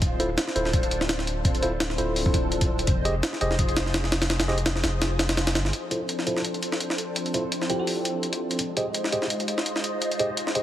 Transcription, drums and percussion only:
0.02 kick, closed hi-hat
0.20 closed hi-hat
0.38 snare, closed hi-hat
0.48 snare
0.56 closed hi-hat
0.65 snare
0.73 kick, closed hi-hat
0.83 closed hi-hat
0.91 closed hi-hat
1.01 snare
1.09 snare, closed hi-hat
1.19 snare
1.27 closed hi-hat
1.45 kick, closed hi-hat
1.55 closed hi-hat
1.63 closed hi-hat
1.80 snare, closed hi-hat
1.90 snare
1.98 closed hi-hat
2.16 open hi-hat
2.26 kick
2.34 kick, closed hi-hat
2.52 closed hi-hat
2.61 kick, closed hi-hat
2.79 closed hi-hat
2.87 kick, closed hi-hat
3.05 closed hi-hat
3.23 snare, closed hi-hat
3.33 snare
3.41 closed hi-hat
3.51 snare
3.59 kick, closed hi-hat
3.69 closed hi-hat
3.77 snare, closed hi-hat
3.86 snare
3.94 snare, closed hi-hat
4.04 snare
4.12 snare, closed hi-hat
4.22 snare, closed hi-hat
4.30 snare, closed hi-hat
4.40 snare, closed hi-hat
4.48 snare
4.58 closed hi-hat
4.66 snare, closed hi-hat
4.76 snare
4.84 snare, closed hi-hat
5.02 snare, closed hi-hat
5.19 snare, closed hi-hat
5.29 snare, closed hi-hat
5.37 snare, closed hi-hat
5.47 snare, closed hi-hat
5.55 snare, closed hi-hat
5.65 snare
5.73 closed hi-hat
5.91 closed hi-hat
6.09 closed hi-hat
6.19 snare
6.27 closed hi-hat
6.37 snare
6.45 closed hi-hat
6.54 closed hi-hat
6.63 closed hi-hat
6.72 snare
6.80 closed hi-hat
6.90 snare
6.98 closed hi-hat
7.16 closed hi-hat
7.26 closed hi-hat
7.34 closed hi-hat
7.52 closed hi-hat
7.62 snare
7.70 closed hi-hat
7.87 open hi-hat
8.05 closed hi-hat
8.23 closed hi-hat
8.33 closed hi-hat
8.51 closed hi-hat
8.59 closed hi-hat
8.77 closed hi-hat
8.95 closed hi-hat
9.04 snare
9.12 closed hi-hat
9.22 snare
9.30 closed hi-hat
9.40 closed hi-hat
9.48 closed hi-hat
9.58 snare
9.66 closed hi-hat
9.76 snare
9.84 closed hi-hat
10.02 closed hi-hat
10.12 closed hi-hat
10.19 closed hi-hat
10.37 closed hi-hat
10.47 snare
10.55 closed hi-hat

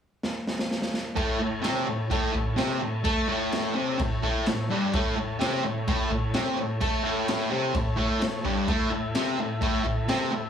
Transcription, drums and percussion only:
0.23 snare
0.47 snare
0.59 snare
0.71 snare
0.82 snare
0.94 snare
1.17 kick, crash
1.64 snare, crash
2.11 kick, crash
2.35 kick
2.58 snare, crash
3.05 kick, crash
3.52 snare, crash
3.99 kick, crash
4.23 kick
4.46 snare, crash
4.93 kick, crash
5.41 snare, crash
5.88 kick, crash
6.11 kick
6.34 snare, crash
6.81 kick, crash
7.28 snare, crash
7.75 kick, crash
7.98 kick
8.21 snare, crash
8.45 kick
8.68 kick, crash
9.15 snare, crash
9.62 kick, crash
9.85 kick
10.09 snare, crash

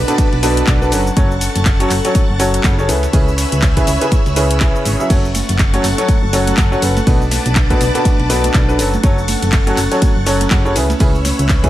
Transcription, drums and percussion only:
0.08 snare, closed hi-hat, shaker
0.18 kick, closed hi-hat, ride, shaker
0.33 ride
0.43 open hi-hat, ride, shaker
0.57 closed hi-hat, shaker
0.67 kick, snare, clap, closed hi-hat, ride, shaker
0.82 shaker
0.92 open hi-hat, ride, shaker
1.07 shaker
1.17 kick, closed hi-hat, ride, shaker
1.31 shaker
1.41 open hi-hat, ride, shaker
1.56 closed hi-hat, ride, shaker
1.65 kick, snare, clap, closed hi-hat, ride, shaker
1.80 closed hi-hat, shaker
1.90 clap, open hi-hat, ride, shaker
2.05 snare, closed hi-hat, shaker
2.15 kick, closed hi-hat, ride, shaker
2.40 open hi-hat, ride, shaker
2.54 closed hi-hat, shaker
2.64 kick, snare, clap, closed hi-hat, ride, shaker
2.79 shaker
2.89 open hi-hat, ride, shaker
3.03 ride, shaker
3.13 kick, closed hi-hat, open hi-hat, shaker
3.28 shaker
3.38 snare, open hi-hat, ride, shaker
3.52 closed hi-hat, shaker
3.62 kick, snare, clap, closed hi-hat, ride, shaker
3.77 kick, closed hi-hat, ride, shaker
3.87 open hi-hat, ride, shaker
4.01 snare, closed hi-hat, shaker
4.12 kick, closed hi-hat, ride, shaker
4.26 ride, shaker
4.36 open hi-hat, ride, shaker
4.51 closed hi-hat, shaker
4.60 kick, snare, clap, closed hi-hat, ride, shaker
4.75 shaker
4.85 open hi-hat, ride, shaker
5.00 shaker
5.10 kick, closed hi-hat, crash, ride, tambourine, shaker
5.25 tambourine, shaker
5.35 open hi-hat, ride, tambourine, high conga, shaker
5.49 closed hi-hat, ride, tambourine, shaker
5.59 kick, snare, clap, closed hi-hat, ride, tambourine, shaker
5.73 closed hi-hat, tambourine, high conga, shaker
5.83 clap, open hi-hat, ride, tambourine, shaker
5.98 snare, closed hi-hat, tambourine, shaker
6.08 kick, closed hi-hat, ride, tambourine, high conga, shaker
6.23 tambourine
6.33 open hi-hat, ride, tambourine, shaker
6.47 closed hi-hat, tambourine, high conga, shaker
6.57 kick, snare, clap, closed hi-hat, ride, tambourine, shaker
6.72 tambourine, shaker
6.82 open hi-hat, ride, tambourine, shaker
6.97 ride, tambourine, high conga, shaker
7.06 kick, closed hi-hat, open hi-hat, tambourine, shaker
7.21 tambourine, shaker
7.31 snare, open hi-hat, ride, tambourine, high conga, shaker
7.46 closed hi-hat, tambourine, shaker
7.55 kick, snare, clap, closed hi-hat, ride, tambourine, shaker
7.70 kick, closed hi-hat, ride, tambourine, high conga, shaker
7.81 open hi-hat, ride, tambourine, shaker
7.94 snare, closed hi-hat, tambourine, shaker
8.05 kick, closed hi-hat, ride, tambourine, high conga, shaker
8.20 ride, tambourine
8.30 open hi-hat, ride, tambourine, shaker
8.44 closed hi-hat, tambourine, high conga, shaker
8.54 kick, snare, clap, closed hi-hat, ride, shaker
8.69 tambourine, shaker
8.79 open hi-hat, ride, tambourine, shaker
8.93 tambourine, high conga, shaker
9.03 kick, closed hi-hat, ride, tambourine, shaker
9.18 tambourine, shaker
9.28 open hi-hat, ride, tambourine, high conga, shaker
9.42 closed hi-hat, ride, tambourine, shaker
9.52 kick, snare, clap, closed hi-hat, ride, tambourine, shaker
9.67 closed hi-hat, tambourine, high conga, shaker
9.77 clap, open hi-hat, ride, tambourine, shaker
9.91 snare, closed hi-hat, tambourine, shaker
10.02 kick, closed hi-hat, ride, tambourine, high conga, shaker
10.17 tambourine
10.26 open hi-hat, ride, tambourine, shaker
10.41 closed hi-hat, tambourine, high conga, shaker
10.51 kick, snare, clap, closed hi-hat, ride, tambourine, shaker
10.65 tambourine, shaker
10.76 open hi-hat, ride, tambourine, shaker
10.89 ride, tambourine, high conga, shaker
10.99 kick, closed hi-hat, open hi-hat, tambourine, shaker
11.14 tambourine, shaker
11.25 snare, open hi-hat, ride, tambourine, high conga, shaker
11.39 closed hi-hat, tambourine, shaker
11.49 kick, snare, clap, closed hi-hat, ride, tambourine, shaker
11.64 kick, closed hi-hat, ride, tambourine, high conga, shaker

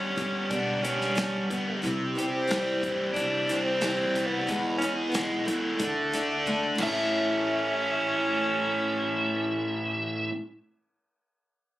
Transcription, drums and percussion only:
0.18 kick, closed hi-hat
0.51 kick, closed hi-hat
0.85 closed hi-hat
1.01 snare
1.18 snare, closed hi-hat
1.50 kick, closed hi-hat
1.84 kick, closed hi-hat
2.19 closed hi-hat
2.51 snare, closed hi-hat
2.83 kick, closed hi-hat
3.16 kick, closed hi-hat
3.49 snare, closed hi-hat
3.81 snare, closed hi-hat
4.15 kick, closed hi-hat
4.49 kick, closed hi-hat
4.82 closed hi-hat
5.14 snare, closed hi-hat
5.48 closed hi-hat
5.80 kick, closed hi-hat
6.14 snare, closed hi-hat
6.46 kick
6.78 kick, crash

